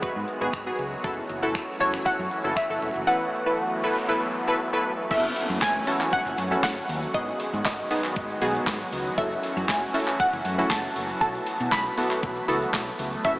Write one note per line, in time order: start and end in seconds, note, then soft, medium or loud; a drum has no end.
0.00 1.02 D#3 medium
0.00 5.07 F#3 medium
0.00 1.02 G#3 medium
0.00 1.02 B3 medium
0.00 0.22 B3 medium
0.00 5.07 F#4 medium
0.00 0.22 F#4 medium
0.00 0.22 B4 loud
0.00 0.75 D#5 medium
0.00 muted fingered electric bass stroke soft
0.00 kick loud
0.00 closed hi-hat medium
0.16 0.23 G#2 medium
0.28 closed hi-hat medium
0.41 0.49 G#1 medium
0.41 0.53 B3 medium
0.41 0.54 F#4 medium
0.41 0.54 G#4 loud
0.53 finger snap loud
0.53 kick loud
0.53 closed hi-hat medium
0.67 0.86 B3 medium
0.67 0.86 F#4 medium
0.67 0.86 G#4 loud
0.79 0.94 C#2 medium
0.79 closed hi-hat soft
1.04 1.20 F#1 loud
1.04 5.07 E3 medium
1.04 5.07 A3 medium
1.04 3.06 C#4 medium
1.04 1.24 E4 medium
1.04 1.24 F#4 medium
1.04 1.24 A4 loud
1.04 kick loud
1.04 closed hi-hat medium
1.29 1.54 F#1 loud
1.29 closed hi-hat medium
1.43 1.62 E4 medium
1.43 1.62 F#4 medium
1.43 1.62 A4 loud
1.55 finger snap loud
1.55 kick loud
1.55 closed hi-hat medium
1.80 1.96 F#1 medium
1.80 1.94 E4 medium
1.80 1.94 F#4 medium
1.80 1.94 A4 medium
1.80 1.92 C#5 loud
1.80 closed hi-hat medium
1.94 finger snap medium
2.05 2.25 E4 medium
2.05 2.25 F#4 medium
2.05 2.25 A4 medium
2.05 2.58 F#5 loud
2.05 muted fingered electric bass stroke medium
2.05 kick loud
2.05 closed hi-hat medium
2.19 2.27 F#2 loud
2.31 closed hi-hat medium
2.44 2.52 F#1 loud
2.44 2.57 E4 medium
2.44 2.57 F#4 medium
2.44 2.57 A4 medium
2.56 3.09 E5 loud
2.56 finger snap loud
2.56 kick loud
2.56 closed hi-hat medium
2.70 2.78 F#1 medium
2.70 2.89 E4 medium
2.70 2.89 F#4 medium
2.70 2.89 A4 medium
2.82 2.91 E1 medium
2.82 closed hi-hat soft
2.96 3.03 F#1 medium
3.07 5.09 B3 medium
3.07 3.27 E4 medium
3.07 3.27 A4 medium
3.07 3.27 B4 medium
3.07 3.80 F#5 medium
3.07 noise sweep medium
3.46 3.65 E4 medium
3.46 3.65 A4 medium
3.46 3.65 B4 medium
3.84 3.97 E4 medium
3.84 3.97 A4 medium
3.84 3.98 B4 loud
4.09 4.29 E4 medium
4.09 4.29 A4 medium
4.09 4.29 B4 loud
4.48 4.60 E4 medium
4.48 4.60 A4 medium
4.48 4.60 B4 loud
4.73 4.92 E4 medium
4.73 4.92 A4 medium
4.73 4.93 B4 loud
5.11 5.27 F#1 loud
5.11 7.12 E3 medium
5.11 13.39 F#3 medium
5.11 7.12 A3 medium
5.11 5.50 C#4 medium
5.11 7.12 C#4 medium
5.11 5.50 E4 medium
5.11 7.12 F#4 medium
5.11 5.50 F#4 medium
5.11 5.50 A4 medium
5.11 5.63 E5 medium
5.11 kick loud
5.11 closed hi-hat medium
5.11 crash loud
5.11 downlifter medium
5.11 shaker medium
5.24 shaker soft
5.24 shaker medium
5.36 open hi-hat medium
5.36 shaker medium
5.50 5.57 F#2 loud
5.50 shaker medium
5.62 5.78 F#1 loud
5.62 6.14 G#5 loud
5.62 kick loud
5.62 snare medium
5.62 clap loud
5.62 closed hi-hat medium
5.62 shaker medium
5.75 shaker medium
5.75 shaker soft
5.87 6.20 C#4 medium
5.87 6.20 E4 medium
5.87 6.20 F#4 medium
5.87 6.20 A4 medium
5.87 open hi-hat medium
5.87 shaker medium
6.01 clap medium
6.01 shaker soft
6.01 shaker medium
6.13 6.63 F#5 loud
6.13 kick loud
6.13 closed hi-hat medium
6.13 shaker medium
6.26 6.33 F#1 loud
6.26 shaker soft
6.26 shaker medium
6.38 6.54 F#2 loud
6.38 open hi-hat medium
6.38 shaker soft
6.51 6.83 C#4 medium
6.51 6.83 E4 medium
6.51 6.83 F#4 medium
6.51 6.83 A4 medium
6.51 shaker soft
6.51 shaker medium
6.63 6.79 F#1 loud
6.63 7.16 F#5 loud
6.63 kick loud
6.63 snare loud
6.63 clap loud
6.63 closed hi-hat medium
6.63 shaker medium
6.77 shaker soft
6.77 shaker medium
6.89 7.05 D#2 medium
6.89 open hi-hat medium
6.89 shaker medium
7.02 shaker medium
7.14 7.30 G#1 loud
7.14 9.16 D#3 medium
7.14 9.16 G#3 medium
7.14 9.16 B3 medium
7.14 7.54 B3 medium
7.14 7.54 D#4 medium
7.14 13.20 F#4 medium
7.14 7.54 F#4 medium
7.14 7.54 G#4 medium
7.14 7.64 D#5 medium
7.14 kick loud
7.14 closed hi-hat medium
7.14 shaker medium
7.28 shaker medium
7.28 shaker soft
7.40 open hi-hat medium
7.40 shaker medium
7.53 7.61 G#2 loud
7.53 shaker medium
7.65 7.81 G#1 loud
7.65 8.88 D#5 medium
7.65 kick loud
7.65 snare medium
7.65 clap loud
7.65 closed hi-hat medium
7.65 shaker medium
7.79 shaker medium
7.79 shaker soft
7.90 8.16 B3 medium
7.90 8.16 D#4 medium
7.90 8.16 F#4 medium
7.90 8.17 G#4 medium
7.90 open hi-hat medium
7.90 shaker medium
8.04 clap medium
8.04 shaker soft
8.04 shaker medium
8.16 8.32 G#1 loud
8.16 kick loud
8.16 closed hi-hat medium
8.16 shaker medium
8.30 shaker soft
8.30 shaker medium
8.41 8.57 B1 medium
8.41 8.81 B3 medium
8.41 8.81 D#4 medium
8.41 8.81 F#4 medium
8.41 8.81 G#4 loud
8.41 open hi-hat medium
8.41 shaker medium
8.41 shaker soft
8.55 shaker soft
8.55 shaker medium
8.67 8.83 G#1 loud
8.67 kick loud
8.67 snare loud
8.67 clap loud
8.67 closed hi-hat medium
8.67 shaker medium
8.80 shaker medium
8.80 shaker soft
8.92 9.08 C#2 medium
8.92 open hi-hat medium
8.92 shaker medium
9.06 shaker medium
9.18 9.34 F#1 loud
9.18 13.39 E3 medium
9.18 11.19 A3 medium
9.18 11.19 C#4 medium
9.18 9.57 C#4 medium
9.18 9.57 E4 medium
9.18 9.57 F#4 medium
9.18 9.57 A4 medium
9.18 9.70 E5 medium
9.18 kick loud
9.18 closed hi-hat medium
9.18 shaker medium
9.31 shaker soft
9.31 shaker medium
9.43 open hi-hat medium
9.43 shaker medium
9.57 9.64 F#2 loud
9.57 shaker medium
9.69 9.84 F#1 loud
9.69 10.21 G#5 medium
9.69 kick loud
9.69 snare medium
9.69 clap loud
9.69 closed hi-hat medium
9.69 shaker medium
9.82 shaker medium
9.82 shaker soft
9.94 10.27 C#4 medium
9.94 10.27 E4 medium
9.94 10.27 F#4 medium
9.94 10.27 A4 medium
9.94 open hi-hat medium
9.94 shaker medium
10.08 clap medium
10.08 shaker soft
10.08 shaker medium
10.19 10.72 F#5 medium
10.19 kick loud
10.19 closed hi-hat medium
10.19 shaker medium
10.33 10.40 F#1 loud
10.33 shaker soft
10.33 shaker medium
10.45 10.61 F#2 loud
10.45 open hi-hat medium
10.45 shaker soft
10.58 10.90 C#4 medium
10.58 10.90 E4 medium
10.58 10.90 F#4 medium
10.58 10.90 A4 medium
10.58 shaker soft
10.58 shaker medium
10.70 10.86 F#1 loud
10.70 11.18 A5 loud
10.70 kick loud
10.70 snare loud
10.70 clap loud
10.70 closed hi-hat medium
10.70 shaker medium
10.84 shaker medium
10.84 shaker soft
10.96 11.12 F#1 medium
10.96 open hi-hat medium
10.96 shaker medium
11.09 shaker medium
11.21 11.37 B1 loud
11.21 13.39 A3 medium
11.21 11.60 B3 medium
11.21 13.23 B3 medium
11.21 11.61 E4 medium
11.21 11.61 F#4 medium
11.21 11.61 A4 medium
11.21 11.68 A5 loud
11.21 kick loud
11.21 closed hi-hat medium
11.21 shaker medium
11.35 shaker soft
11.35 shaker medium
11.47 open hi-hat medium
11.47 shaker medium
11.47 shaker soft
11.60 11.68 B2 loud
11.60 shaker medium
11.72 11.88 B1 loud
11.72 12.95 B5 loud
11.72 kick loud
11.72 snare medium
11.72 clap loud
11.72 closed hi-hat medium
11.72 shaker medium
11.85 shaker soft
11.85 shaker medium
11.97 12.23 B3 medium
11.97 12.23 E4 medium
11.97 12.23 F#4 medium
11.97 12.24 A4 medium
11.97 open hi-hat medium
11.97 shaker medium
12.11 clap medium
12.11 shaker medium
12.23 12.39 B1 loud
12.23 kick loud
12.23 closed hi-hat medium
12.23 shaker medium
12.36 shaker soft
12.36 shaker medium
12.48 12.64 C#2 loud
12.48 12.88 B3 medium
12.48 12.88 E4 medium
12.48 12.88 F#4 medium
12.48 12.88 A4 loud
12.48 open hi-hat medium
12.48 shaker soft
12.48 shaker medium
12.62 shaker soft
12.62 shaker medium
12.74 12.89 B1 loud
12.74 kick loud
12.74 snare loud
12.74 clap loud
12.74 closed hi-hat medium
12.74 shaker medium
12.87 shaker soft
12.87 shaker medium
12.99 13.15 C#2 medium
12.99 open hi-hat medium
12.99 shaker soft
12.99 shaker medium
13.13 shaker medium
13.24 13.39 F#1 loud
13.24 13.39 C#4 medium
13.24 13.39 E4 medium
13.24 13.39 F#4 medium
13.24 13.39 A4 medium
13.24 13.39 E5 medium
13.24 kick loud
13.24 closed hi-hat medium
13.24 shaker medium